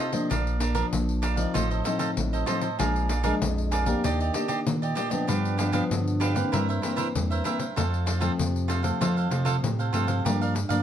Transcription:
Already playing: C3 C4 D#4 F4 A4
0.00 A4 C5 D#5
0.12 F3 A#3 D4 A4 C5 D#5, pandeiro
0.30 A#1 A#2 D4 A#4 D5 F5, pandeiro
0.47 pandeiro
0.60 D4 A#4 D5 F5, pandeiro
0.74 F3 A#3 D4 A#4 D5 F5, pandeiro
0.93 A#1 F3, pandeiro
1.09 pandeiro
1.22 D4 A#4 D5 F5, pandeiro
1.36 F3 C4 D#4 A#4 D5 F5, pandeiro
1.54 A1 A2 F4 A4 C5 D#5, pandeiro
1.71 A4 C5 D#5, pandeiro
1.84 F3 C4 D#4 F4 A4 C5 D#5, pandeiro
1.99 F4 A4 C5 D#5, pandeiro
2.17 A1 A2, pandeiro
2.33 A4 C5 D#5, pandeiro
2.46 F3 C4 D#4 F4 A4 C5 D#5, pandeiro
2.61 A4 C5 D#5, pandeiro
2.79 A#1 A#2 F3 G#3 D4 G#4 A#4 D5 F5, pandeiro
2.96 pandeiro
3.09 G#4 A#4 D5 F5, pandeiro
3.23 F3 G#3 D4 G#4 A#4 D5 F5, pandeiro
3.42 A#1 F2, pandeiro
3.58 pandeiro
3.71 G#4 A#4 D5 F5, pandeiro
3.86 A#3 D4 G4 A#4 D5 F5, pandeiro
4.04 D#2 D#3 D4 G4 D5 D#5, pandeiro
4.20 G4 D5 D#5, pandeiro
4.34 A#3 D4 G4 D5 D#5, pandeiro
4.48 D4 G4 D5 D#5, pandeiro
4.67 A#2 D#3, pandeiro
4.82 G4 D5 D#5, pandeiro
4.95 A#3 D4 G4 D5 D#5, pandeiro
5.10 F3 B3 D4 G4 D5 D#5, pandeiro
5.27 G2 D4 G4 B4 F5, pandeiro
5.45 pandeiro
5.58 F3 B3 D4 G4 B4 F5, pandeiro
5.72 F3 B3 D4 G4 B4 F5, pandeiro
5.90 G2 D3, pandeiro
6.08 pandeiro
6.20 D4 G4 B4 F5, pandeiro
6.35 E3 A#3 C4 G4 B4 F5, pandeiro
6.52 G2 E4 A#4 C5 E5, pandeiro
6.69 A#4 C5 E5, pandeiro
6.82 E3 A#3 C4 E4 A#4 C5 E5, pandeiro
6.96 E4 A#4 C5 E5, pandeiro
7.15 E2 G2, pandeiro
7.30 A#4 C5 E5, pandeiro
7.44 E3 A#3 C4 E4 A#4 C5 E5, pandeiro
7.59 A#4 C5 E5, pandeiro
7.76 F2 F3 A3 C4 F4 A4 C5 F5, pandeiro
7.94 pandeiro
8.06 F4 A4 C5 F5, pandeiro
8.20 F3 A3 C4 F4 A4 C5 F5, pandeiro
8.39 F2 C3, pandeiro
8.56 pandeiro
8.68 F4 A4 C5 F5, pandeiro
8.83 F3 A3 C4 A4 C5 F5, pandeiro
9.01 F2 F3 F4 A4 C5 F5, pandeiro
9.17 A4 C5 F5, pandeiro
9.30 C3 F3 A3 C4 F4 A4 C5 F5, pandeiro
9.45 F4 A4 C5 F5, pandeiro
9.63 A2 C3, pandeiro
9.79 A4 C5 F5, pandeiro
9.93 G2 F3 A3 C4 F4 A4 C5 F5, pandeiro
10.07 A4 C5 F5, pandeiro
10.25 G2 F3 A#3 D4 G4 A#4 D5 F5, pandeiro
10.41 A#4 D5 F5, pandeiro
10.55 muted cavaquinho stroke, pandeiro
10.69 G2 F3 A#3 D4 A#4 D5 F5, pandeiro

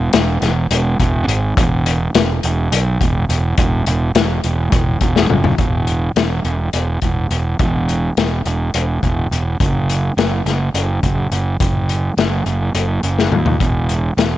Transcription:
0.13 E1, snare, closed hi-hat
0.42 E1, snare, closed hi-hat
0.70 E1, closed hi-hat
0.99 E1, kick, closed hi-hat
1.27 G#1, closed hi-hat
1.57 E1, kick, closed hi-hat
1.86 closed hi-hat
2.15 E1, snare, closed hi-hat
2.43 E1, closed hi-hat
2.72 B1, closed hi-hat
3.01 E1, kick, closed hi-hat
3.29 E1, closed hi-hat
3.58 E1, kick, closed hi-hat
3.87 E1, closed hi-hat
4.15 E1, snare, closed hi-hat
4.44 E1, closed hi-hat
4.72 E1, kick, closed hi-hat
5.01 E1, kick, closed hi-hat
5.16 snare
5.30 F#1, mid tom
5.44 floor tom
5.58 E1, kick, closed hi-hat
5.87 closed hi-hat
6.16 E1, snare, closed hi-hat
6.44 E1, closed hi-hat
6.73 E1, closed hi-hat
7.02 E1, kick, closed hi-hat
7.30 E1, closed hi-hat
7.59 E1, kick, closed hi-hat
7.89 closed hi-hat
8.17 E1, snare, closed hi-hat
8.45 E1, closed hi-hat
8.74 E1, closed hi-hat
9.02 E1, kick, closed hi-hat
9.31 E1, closed hi-hat
9.60 F#1, kick, closed hi-hat
9.89 closed hi-hat
10.17 F#1, snare, closed hi-hat
10.45 F#1, snare, closed hi-hat
10.74 F#1, closed hi-hat
11.03 F#1, kick, closed hi-hat
11.31 F#1, closed hi-hat
11.60 F#1, kick, closed hi-hat
11.89 closed hi-hat
12.17 F#1, snare, closed hi-hat
12.46 F#1, closed hi-hat
12.74 F#1, closed hi-hat
13.03 F#1, closed hi-hat
13.19 snare
13.31 D#2, mid tom
13.46 floor tom
13.60 E1, kick, closed hi-hat
13.89 closed hi-hat
14.17 E1, snare, closed hi-hat

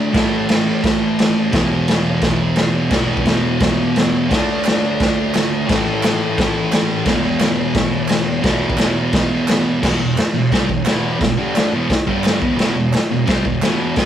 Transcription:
Already playing: D3 A3 D4
0.13 A2 E3 A3, kick, snare, crash
0.49 snare, crash
0.84 kick, snare, crash
1.19 snare, crash
1.51 E2 B2 E3, kick, snare, crash
1.88 snare, crash
2.22 kick, snare, crash
2.56 snare, crash
2.90 E2 B2 E3, kick, snare, crash
3.17 kick
3.26 snare, crash
3.60 kick, snare, crash
3.96 snare, crash
4.30 D3 A3 D4, kick, snare, crash
4.64 snare, clap, crash
5.00 kick, snare, crash
5.34 snare, clap, crash
5.67 A2 E3 A3, kick, snare, crash
6.03 snare, clap, crash
6.38 kick, snare, crash
6.72 snare, clap, crash
7.05 E2 B2 E3, kick, snare, crash
7.39 snare, clap, crash
7.75 kick, snare, crash
8.08 snare, clap, crash
8.42 E2 B2 E3, kick, snare, crash
8.70 kick
8.77 snare, clap, crash
9.13 kick, snare, crash
9.48 snare, clap, crash
9.81 E2 B2 E3, kick, snare, crash
9.99 E2 B2
10.17 snare, clap, crash
10.34 E2 B2
10.52 C3 G3 C4, kick, snare, crash
10.69 E2 B2, kick
10.85 E2 B2 E3, snare, clap, crash
11.19 E2 B2, kick, snare, crash
11.37 G2 D3 G3
11.55 D3 A3 D4, snare, clap, crash
11.73 E2 B2 E3
11.90 muted distorted electric guitar stroke, kick, snare, crash
12.07 G2 D3 G3, kick
12.23 snare, clap, crash
12.41 E2 B2 E3, kick
12.57 E2 B2 E3, snare, crash
12.76 E2 B2
12.93 snare, clap, crash
13.11 E2 B2
13.26 C3 G3 C4, kick, snare, crash
13.45 E2 B2, kick
13.62 E2 B2 E3, snare, clap, crash
13.96 B2 F#3 B3, kick, snare, crash

